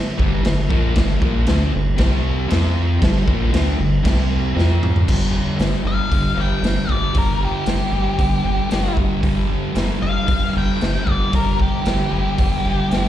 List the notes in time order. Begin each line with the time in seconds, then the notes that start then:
0.18 G1 G2 D3 G3, kick
0.43 G1 G2 D3, snare, crash
0.69 A#1 A#2 F3 A#3, kick
0.94 G1 G2 D3 G3, kick, snare, crash
1.19 A#1 A#2 F3 A#3, kick
1.46 D2 D3 A3 D4, snare, crash
1.72 G1 G2 D3
1.96 C2 C3 G3 C4, kick, snare, crash
2.48 F2 F3 C4 F4, snare, crash
2.99 G1 G2 D3 G3, kick, crash
3.03 snare
3.26 A#1 A#2 F3 A#3, kick
3.50 D3 A3 D4, crash
3.54 D2, snare
3.77 G1 G2 D3
4.03 C2 C3 G3 C4, kick, snare, crash
4.55 F2 F3 C4 F4, snare
4.83 mid tom
4.96 floor tom
5.05 G1 G2 D3, kick, crash
5.09 G3
5.31 G3
5.36 D3
5.57 G1 G2 D3, snare, open hi-hat
5.62 G3
5.83 G1 D3 G3
5.87 G2 F5
6.09 G1 G2 D3 G3, kick, open hi-hat
6.35 G1 D3 G3
6.40 G2 G5
6.60 G1 G2 D3, open hi-hat
6.65 G3, snare
6.87 G1 D3 G3 D5, kick
7.13 G1 G2 D3, kick, open hi-hat
7.17 G3 A#4
7.39 G3
7.44 D3 G4
7.66 G1 G2 D3, snare, open hi-hat
7.70 G3
7.91 G1 D3 G3
7.95 G2
8.15 G1 G2 D3, kick, open hi-hat
8.21 G3
8.42 G1 D3 G3
8.47 G2
8.68 G2 D3, snare, open hi-hat
8.72 G1 G3
8.94 G1 G3, kick
8.99 D3
9.20 G1 G2 D3, kick, open hi-hat
9.25 G3
9.46 G3
9.51 D3
9.71 G2 D3, open hi-hat
9.76 G1 G3, snare
9.97 D3 G3
10.02 G1 G2 F5
10.24 G2 D3
10.28 G1 G3, kick, open hi-hat
10.50 D3 G3
10.54 G1 G2 G5
10.76 G2 D3
10.81 G1 G3, snare, open hi-hat
11.03 G3
11.07 G1 D3 D5, kick
11.30 G1 G2 D3, kick, open hi-hat
11.34 G3 A#4
11.56 G3, kick
11.61 D3 G4
11.82 G2 D3, open hi-hat
11.86 G1 G3, snare
12.08 G2 D3 G3
12.12 G1
12.35 G2 D3, kick, open hi-hat
12.40 G1 G3
12.61 G1 D3 G3
12.66 G2
12.88 G1 G2 D3, open hi-hat
12.92 G3, snare